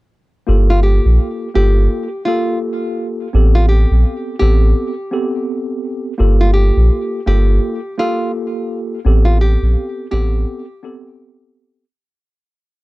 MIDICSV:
0, 0, Header, 1, 4, 480
1, 0, Start_track
1, 0, Tempo, 714286
1, 324, Time_signature, 4, 2, 24, 8
1, 8622, End_track
2, 0, Start_track
2, 0, Title_t, "Nylon-string guitar"
2, 0, Program_c, 0, 24
2, 471, Note_on_c, 0, 65, 79
2, 556, Note_off_c, 0, 65, 0
2, 558, Note_on_c, 0, 67, 82
2, 1014, Note_off_c, 0, 67, 0
2, 1044, Note_on_c, 0, 67, 92
2, 1497, Note_off_c, 0, 67, 0
2, 1513, Note_on_c, 0, 65, 83
2, 1734, Note_off_c, 0, 65, 0
2, 2386, Note_on_c, 0, 65, 85
2, 2474, Note_off_c, 0, 65, 0
2, 2478, Note_on_c, 0, 67, 79
2, 2934, Note_off_c, 0, 67, 0
2, 2953, Note_on_c, 0, 67, 84
2, 4132, Note_off_c, 0, 67, 0
2, 4306, Note_on_c, 0, 65, 83
2, 4390, Note_off_c, 0, 65, 0
2, 4392, Note_on_c, 0, 67, 79
2, 4851, Note_off_c, 0, 67, 0
2, 4888, Note_on_c, 0, 67, 83
2, 5339, Note_off_c, 0, 67, 0
2, 5371, Note_on_c, 0, 65, 84
2, 5584, Note_off_c, 0, 65, 0
2, 6216, Note_on_c, 0, 65, 77
2, 6309, Note_off_c, 0, 65, 0
2, 6325, Note_on_c, 0, 67, 84
2, 6778, Note_off_c, 0, 67, 0
2, 6796, Note_on_c, 0, 67, 87
2, 7973, Note_off_c, 0, 67, 0
2, 8622, End_track
3, 0, Start_track
3, 0, Title_t, "Tine electric piano"
3, 0, Program_c, 1, 4
3, 312, Note_on_c, 1, 58, 100
3, 318, Note_on_c, 1, 65, 85
3, 322, Note_on_c, 1, 67, 88
3, 327, Note_on_c, 1, 69, 105
3, 991, Note_off_c, 1, 58, 0
3, 994, Note_off_c, 1, 65, 0
3, 996, Note_off_c, 1, 67, 0
3, 999, Note_off_c, 1, 69, 0
3, 1038, Note_on_c, 1, 58, 92
3, 1043, Note_on_c, 1, 65, 84
3, 1048, Note_on_c, 1, 67, 84
3, 1053, Note_on_c, 1, 69, 110
3, 1389, Note_off_c, 1, 58, 0
3, 1392, Note_off_c, 1, 65, 0
3, 1394, Note_off_c, 1, 67, 0
3, 1397, Note_off_c, 1, 69, 0
3, 1520, Note_on_c, 1, 58, 93
3, 1524, Note_on_c, 1, 65, 86
3, 1529, Note_on_c, 1, 67, 88
3, 1534, Note_on_c, 1, 69, 117
3, 2195, Note_off_c, 1, 58, 0
3, 2197, Note_off_c, 1, 65, 0
3, 2200, Note_off_c, 1, 67, 0
3, 2202, Note_off_c, 1, 69, 0
3, 2240, Note_on_c, 1, 59, 91
3, 2245, Note_on_c, 1, 60, 78
3, 2250, Note_on_c, 1, 67, 94
3, 2255, Note_on_c, 1, 69, 105
3, 2915, Note_off_c, 1, 59, 0
3, 2918, Note_off_c, 1, 60, 0
3, 2920, Note_off_c, 1, 67, 0
3, 2923, Note_off_c, 1, 69, 0
3, 2954, Note_on_c, 1, 59, 99
3, 2959, Note_on_c, 1, 60, 85
3, 2963, Note_on_c, 1, 67, 85
3, 2969, Note_on_c, 1, 69, 113
3, 3307, Note_off_c, 1, 59, 0
3, 3310, Note_off_c, 1, 60, 0
3, 3312, Note_off_c, 1, 67, 0
3, 3315, Note_off_c, 1, 69, 0
3, 3436, Note_on_c, 1, 59, 97
3, 3441, Note_on_c, 1, 60, 93
3, 3446, Note_on_c, 1, 67, 90
3, 3451, Note_on_c, 1, 69, 103
3, 4113, Note_off_c, 1, 59, 0
3, 4116, Note_off_c, 1, 60, 0
3, 4118, Note_off_c, 1, 67, 0
3, 4121, Note_off_c, 1, 69, 0
3, 4152, Note_on_c, 1, 58, 101
3, 4157, Note_on_c, 1, 65, 84
3, 4162, Note_on_c, 1, 67, 91
3, 4167, Note_on_c, 1, 69, 108
3, 4831, Note_off_c, 1, 58, 0
3, 4834, Note_off_c, 1, 65, 0
3, 4836, Note_off_c, 1, 67, 0
3, 4839, Note_off_c, 1, 69, 0
3, 4879, Note_on_c, 1, 58, 95
3, 4884, Note_on_c, 1, 65, 84
3, 4888, Note_on_c, 1, 67, 85
3, 4894, Note_on_c, 1, 69, 107
3, 5230, Note_off_c, 1, 58, 0
3, 5232, Note_off_c, 1, 65, 0
3, 5234, Note_off_c, 1, 67, 0
3, 5237, Note_off_c, 1, 69, 0
3, 5360, Note_on_c, 1, 58, 97
3, 5365, Note_on_c, 1, 65, 88
3, 5370, Note_on_c, 1, 67, 93
3, 5375, Note_on_c, 1, 69, 123
3, 6035, Note_off_c, 1, 58, 0
3, 6038, Note_off_c, 1, 65, 0
3, 6040, Note_off_c, 1, 67, 0
3, 6042, Note_off_c, 1, 69, 0
3, 6080, Note_on_c, 1, 59, 94
3, 6085, Note_on_c, 1, 60, 81
3, 6090, Note_on_c, 1, 67, 94
3, 6094, Note_on_c, 1, 69, 106
3, 6755, Note_off_c, 1, 59, 0
3, 6758, Note_off_c, 1, 60, 0
3, 6760, Note_off_c, 1, 67, 0
3, 6762, Note_off_c, 1, 69, 0
3, 6793, Note_on_c, 1, 59, 102
3, 6798, Note_on_c, 1, 60, 90
3, 6803, Note_on_c, 1, 67, 85
3, 6808, Note_on_c, 1, 69, 107
3, 7147, Note_off_c, 1, 59, 0
3, 7149, Note_off_c, 1, 60, 0
3, 7152, Note_off_c, 1, 67, 0
3, 7154, Note_off_c, 1, 69, 0
3, 7276, Note_on_c, 1, 59, 98
3, 7281, Note_on_c, 1, 60, 90
3, 7287, Note_on_c, 1, 67, 90
3, 7291, Note_on_c, 1, 69, 100
3, 7953, Note_off_c, 1, 59, 0
3, 7956, Note_off_c, 1, 60, 0
3, 7958, Note_off_c, 1, 67, 0
3, 7961, Note_off_c, 1, 69, 0
3, 8622, End_track
4, 0, Start_track
4, 0, Title_t, "Sub bass"
4, 0, Program_c, 2, 38
4, 327, Note_on_c, 2, 31, 108
4, 669, Note_off_c, 2, 31, 0
4, 709, Note_on_c, 2, 34, 100
4, 796, Note_off_c, 2, 34, 0
4, 1047, Note_on_c, 2, 31, 94
4, 1261, Note_off_c, 2, 31, 0
4, 2247, Note_on_c, 2, 33, 103
4, 2589, Note_off_c, 2, 33, 0
4, 2630, Note_on_c, 2, 34, 84
4, 2716, Note_off_c, 2, 34, 0
4, 2967, Note_on_c, 2, 33, 94
4, 3181, Note_off_c, 2, 33, 0
4, 4167, Note_on_c, 2, 31, 109
4, 4509, Note_off_c, 2, 31, 0
4, 4549, Note_on_c, 2, 34, 101
4, 4636, Note_off_c, 2, 34, 0
4, 4887, Note_on_c, 2, 31, 94
4, 5101, Note_off_c, 2, 31, 0
4, 6087, Note_on_c, 2, 33, 105
4, 6428, Note_off_c, 2, 33, 0
4, 6470, Note_on_c, 2, 34, 98
4, 6556, Note_off_c, 2, 34, 0
4, 6807, Note_on_c, 2, 33, 91
4, 7021, Note_off_c, 2, 33, 0
4, 8622, End_track
0, 0, End_of_file